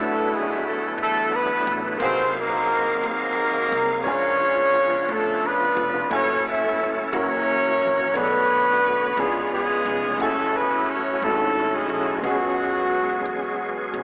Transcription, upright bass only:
Already playing: D2
0.98 E2
1.67 A1
2.00 C2
3.03 D#2
3.72 C2
4.07 C#2
5.09 D2
5.77 F1
6.11 F#1
7.13 F#1
7.82 A#1
8.15 B1
9.17 C#2
9.85 F1
10.20 F#1
11.22 G#1
11.89 B1
12.23 C#2
13.25 E2
13.93 E1

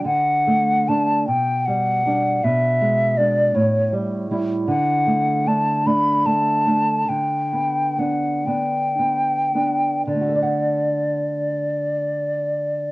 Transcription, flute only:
0.05 F#5
0.88 A5
1.27 G5
1.65 F#5
2.44 E5
3.18 D5
3.56 C#5
4.68 F#5
5.47 A5
5.86 B5
6.26 A5
7.09 G5
7.99 F#5
8.46 G5
10.07 D5

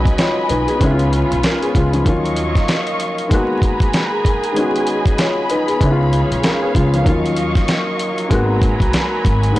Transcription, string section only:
Already playing: F#3 D#5 G#5 B5
0.81 F4 C#5
2.05 F#3 D#5 F5 C#6
3.31 G#4 G#5 A#5 B5
4.56 D#5 B5
5.81 G#4 C#5 F5
7.06 F#3 D#5 C#6
8.31 G#5 A#5 B5
9.55 D#5

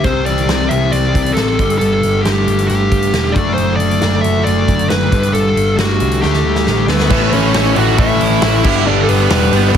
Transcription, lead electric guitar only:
0.04 C5
0.26 D5
0.69 E5
0.92 D5
1.33 A4
1.78 A4
2.22 G4
2.67 G4
3.32 D5
3.54 C5
3.76 D5
4.21 E5
4.44 D5
4.89 B4
5.33 A4
5.79 F#4
6.22 G4
6.89 B3 B4
7.34 C#4 C#5
7.77 F#4 F#5
7.99 E4 E5
8.87 D4 D5
9.00 A4
9.09 B3 B4

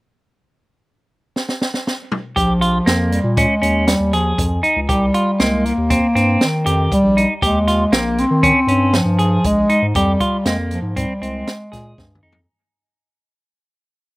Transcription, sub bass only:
2.37 A#1
2.87 F2
3.24 A#2
3.62 D#2
4.00 D#2
4.38 F2
4.76 C#2
4.89 C2
5.40 C2
5.78 D#2
6.15 G2
6.66 F2
7.03 A#1
7.42 D#2
7.92 A#1
8.31 D#3
8.67 G2
9.05 G2
9.44 A#1
9.82 G#2
9.95 F2
10.45 F2
10.82 G#2
11.21 C2
11.73 A#2
11.98 G2
12.23 F2

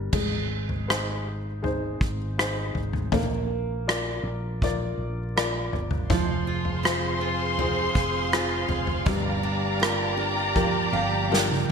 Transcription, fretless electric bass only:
Already playing: G1
0.13 G#1
2.01 G#1
2.75 G#1
3.12 A#1
4.24 A#1
4.98 A#1
5.72 G1
6.11 F1
7.95 F1
8.69 F1
9.06 G1
10.93 G1

